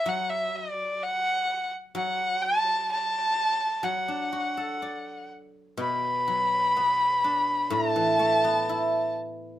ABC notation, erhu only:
X:1
M:2/4
L:1/16
Q:1/4=63
K:none
V:1 name="Erhu"
^f e d2 f3 z | ^f2 a2 a4 | ^f6 z2 | b8 |
a6 z2 |]